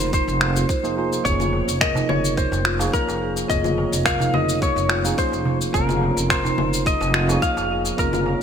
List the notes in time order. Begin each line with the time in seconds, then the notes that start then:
Already playing: F1 F3 A#3 D#4 G#4 C5
0.00 shaker
0.13 C5, kick, shaker
0.28 F1, shaker
0.41 finger snap
0.56 F4, shaker
0.69 C5, kick, shaker
0.83 F1 F3 A#3 D#4 G#4 C5, shaker
0.96 F3 A#3 D#4 F4 G#4 C5
1.12 F4, shaker
1.23 F1 F3 A#3 C#4 D#4 F4 G#4 C#5, kick, shaker
1.40 F4, low conga, shaker
1.53 darbuka ka
1.68 F1, shaker
1.81 A#4 D#5, finger snap, kick, shaker
1.95 D#4, darbuka ka, darbuka dum, shaker
2.09 F1 C#5, low conga
2.25 shaker
2.37 C5, kick, shaker
2.52 F1, darbuka ka, shaker
2.65 F4, finger snap
2.78 F3 A#3 D#4 G#4 C#5 F5, darbuka tek, shaker
2.93 A#4, kick, shaker
3.07 F1, darbuka ka, darbuka tek, shaker
3.21 G#4
3.36 darbuka ka, shaker
3.47 F1 F3 A#3 D#4 F4 G#4 D#5, kick, shaker
3.51 C#5
3.64 F4, low conga, shaker
3.78 darbuka ka
3.92 F1, shaker
4.05 A#4 F5, finger snap, kick, shaker
4.20 D#4, darbuka ka, darbuka dum, shaker
4.34 F1 D#5, low conga
4.49 shaker
4.62 C#5, kick, shaker
4.76 F1, shaker
4.89 F4, finger snap, darbuka tek
5.03 F3 A#3 C#4 D#4 G#4 F5, shaker
5.18 C5, kick, shaker
5.32 F1, darbuka ka, shaker
5.45 G#4, darbuka dum
5.61 shaker
5.72 F1 F3 A#3 D#4 F4 G#4 A#4, kick, shaker
5.76 C#4
5.89 F4, low conga, shaker
6.01 darbuka ka
6.17 F1, shaker
6.30 A#4 C5, finger snap, kick, shaker
6.44 D#4, darbuka ka, darbuka dum, shaker
6.58 F1, low conga
6.73 shaker
6.86 D#5, kick, shaker
7.01 F1, darbuka ka, shaker
7.14 F4, finger snap
7.27 F3 A#3 D#4 G#4 C#5 F5, darbuka tek, shaker
7.42 F5, kick, shaker
7.57 F1, darbuka ka, darbuka tek, shaker
7.70 G#4
7.85 darbuka ka, shaker
7.96 F1 F3 A#3 D#4 F4 G#4 A#4, kick, shaker
8.00 C#4
8.12 F4, low conga, shaker
8.26 darbuka ka